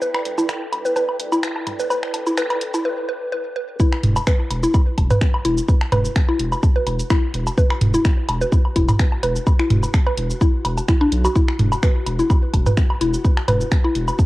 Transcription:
Already playing: analog synth pad E4 A4 D5 G5, synth drone B4
0.02 synth arpeggio sound B4, shaker
0.14 finger snap, low woodblock
0.25 sub bass E1, closed hi-hat
0.38 synth arpeggio sound E4, high woodblock, shaker
0.49 finger snap, low woodblock, shaker
0.72 sub bass E1, closed hi-hat, low woodblock
0.85 synth arpeggio sound B4, shaker
0.96 synth arpeggio sound B4, high woodblock, shaker
1.09 low woodblock
1.20 sub bass E1, closed hi-hat
1.32 synth arpeggio sound E4, low woodblock, shaker
1.43 finger snap, shaker
1.56 high woodblock
1.67 sub bass E1, closed hi-hat, mid tom, low woodblock
1.80 synth arpeggio sound B4, shaker
1.91 synth arpeggio sound B4, low woodblock, shaker
2.03 finger snap
2.14 sub bass E1, closed hi-hat, high woodblock
2.27 synth arpeggio sound E4, low woodblock, shaker
2.38 synth arpeggio sound B4, finger snap, shaker
2.51 closed hi-hat, low woodblock
2.61 sub bass E1, closed hi-hat
2.74 synth arpeggio sound E4, closed hi-hat, high woodblock, shaker
2.85 synth arpeggio sound B4
3.09 synth arpeggio sound B4
3.32 synth arpeggio sound B4
3.56 synth arpeggio sound B4
3.80 synth arpeggio sound E4, synth drone F#4, kick, shaker
3.92 finger snap, low woodblock
4.03 sub bass E1, closed hi-hat, mid tom
4.16 high woodblock, low woodblock, shaker
4.27 synth arpeggio sound B4, finger snap, kick, shaker
4.50 sub bass E1, closed hi-hat, low woodblock
4.63 synth arpeggio sound E4, shaker
4.74 kick, low woodblock, shaker
4.98 sub bass E1, kick, closed hi-hat, high woodblock
5.10 synth arpeggio sound B4, closed hi-hat, mid tom, low woodblock, shaker
5.21 finger snap, kick, shaker
5.34 low woodblock
5.45 sub bass E1, synth arpeggio sound E4, closed hi-hat
5.58 shaker
5.69 kick, low woodblock, shaker
5.81 finger snap, high woodblock
5.92 sub bass E1, synth arpeggio sound B4, closed hi-hat, mid tom, low woodblock
6.05 shaker
6.16 finger snap, kick, shaker
6.29 synth arpeggio sound E4, low woodblock
6.39 sub bass E1, closed hi-hat
6.52 low woodblock, shaker
6.63 kick, high woodblock, shaker
6.76 synth arpeggio sound B4
6.87 sub bass E1, closed hi-hat, low woodblock
6.99 closed hi-hat, shaker
7.10 synth arpeggio sound E4, finger snap, kick, low woodblock, shaker
7.34 sub bass E1, closed hi-hat
7.47 high woodblock, low woodblock, shaker
7.58 synth arpeggio sound B4, kick, shaker
7.70 finger snap, low woodblock
7.81 sub bass E1, closed hi-hat, mid tom
7.94 synth arpeggio sound E4, shaker
8.05 finger snap, kick, low woodblock, shaker
8.28 sub bass E1, closed hi-hat, high woodblock, low woodblock
8.41 synth arpeggio sound B4, shaker
8.52 kick, shaker
8.65 low woodblock
8.76 sub bass E1, synth arpeggio sound E4, kick, closed hi-hat
8.88 closed hi-hat, mid tom, low woodblock, shaker
8.99 finger snap, kick, shaker
9.12 high woodblock
9.23 sub bass E1, synth arpeggio sound B4, closed hi-hat, low woodblock
9.36 shaker
9.47 kick, low woodblock, shaker
9.59 synth arpeggio sound E4, finger snap
9.70 sub bass E1, closed hi-hat, mid tom
9.83 low woodblock, shaker
9.94 finger snap, kick, high woodblock, shaker
10.07 synth arpeggio sound B4, low woodblock
10.17 sub bass E1, closed hi-hat
10.30 shaker
10.41 synth arpeggio sound E4, kick, low woodblock, shaker
10.65 sub bass E1, closed hi-hat, low woodblock
10.77 closed hi-hat, high woodblock, shaker
10.88 synth arpeggio sound E4, finger snap, kick, shaker
11.01 synth arpeggio sound D4, low woodblock
11.12 sub bass B1, closed hi-hat
11.25 synth arpeggio sound F#4, low woodblock, shaker
11.36 synth arpeggio sound E4, kick, shaker
11.48 finger snap, low woodblock
11.59 sub bass E1, closed hi-hat, mid tom
11.72 high woodblock, low woodblock, shaker
11.83 synth arpeggio sound B4, finger snap, kick, shaker
12.06 sub bass E1, closed hi-hat, low woodblock
12.19 synth arpeggio sound E4, shaker
12.30 kick, low woodblock, shaker
12.54 sub bass E1, kick, closed hi-hat, high woodblock
12.66 synth arpeggio sound B4, closed hi-hat, mid tom, low woodblock, shaker
12.77 finger snap, kick, shaker
12.90 low woodblock
13.01 sub bass E1, synth arpeggio sound E4, closed hi-hat
13.14 shaker
13.24 kick, low woodblock, shaker
13.37 finger snap, high woodblock
13.48 sub bass E1, synth arpeggio sound B4, closed hi-hat, mid tom, low woodblock
13.61 shaker
13.72 finger snap, kick, shaker
13.84 synth arpeggio sound E4, low woodblock
13.95 sub bass E1, closed hi-hat
14.08 low woodblock, shaker
14.19 kick, high woodblock, shaker

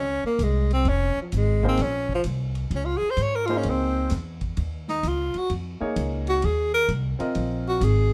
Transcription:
Already playing: upright bass C#2, tenor saxophone C#4
0.24 tenor saxophone A#3, muted upright bass stroke
0.39 upright bass C2, hi-hat pedal, ride
0.44 tenor saxophone G#3
0.71 tenor saxophone C4, ride
0.85 upright bass F1, ride
0.89 tenor saxophone C#4
1.16 muted upright bass stroke
1.22 tenor saxophone F3
1.32 upright bass G#1, hi-hat pedal, ride
1.37 tenor saxophone G#3
1.63 grand piano A#3 D#4 G#4 C5, kick
1.69 tenor saxophone C4
1.77 upright bass A#1, snare, ride
1.83 tenor saxophone C#4
2.09 kick
2.15 tenor saxophone F3
2.24 upright bass C2, hi-hat pedal, ride
2.55 ride
2.70 upright bass C#2, ride
2.76 tenor saxophone C#4
2.85 tenor saxophone F4
2.97 tenor saxophone G#4
3.02 muted upright bass stroke
3.11 tenor saxophone C5
3.17 upright bass G#2, hi-hat pedal, ride
3.22 tenor saxophone C#5
3.35 tenor saxophone A#4
3.46 grand piano A#3 D#4 G#4, tenor saxophone F4, ride
3.50 grand piano C5
3.57 tenor saxophone C#4
3.63 upright bass C#2, ride
3.70 tenor saxophone C4
4.10 upright bass E2, snare, hi-hat pedal, ride
4.41 kick, ride
4.57 upright bass D#2, ride
4.88 tenor saxophone D#4, snare
5.03 upright bass C#2, hi-hat pedal, ride
5.08 tenor saxophone F4
5.34 muted upright bass stroke, ride
5.38 tenor saxophone F#4
5.50 upright bass F2, ride
5.80 grand piano A#3 D#4 G#4 C#5, muted upright bass stroke
5.96 upright bass C#2, hi-hat pedal, ride
6.27 tenor saxophone F#4, ride
6.42 upright bass D#2, tenor saxophone G#4, ride
6.74 tenor saxophone A#4
6.88 upright bass C2, hi-hat pedal, ride
7.19 grand piano C4 F4 A#4 D#5, muted upright bass stroke, ride
7.35 upright bass A#1, ride
7.68 tenor saxophone F#4
7.81 upright bass G#1, tenor saxophone G#4, hi-hat pedal, ride

